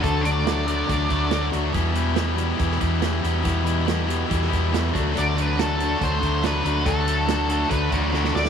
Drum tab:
HH |x-x-x-x-x-x-x-x-|x-x-x-x-x-x-x-x-|x-x-x-x-x-x-x-x-|x-x-x-x-x-x-x-x-|
SD |----o-------o---|----o----o--o---|----o----o--o---|----o-------o---|
BD |o-------o-o-----|o-------o-o-----|o-------o-o---o-|--------o-o-----|

HH |x-x-x-x-x-x-----|
SD |----o-------oooo|
BD |o-------o-o-----|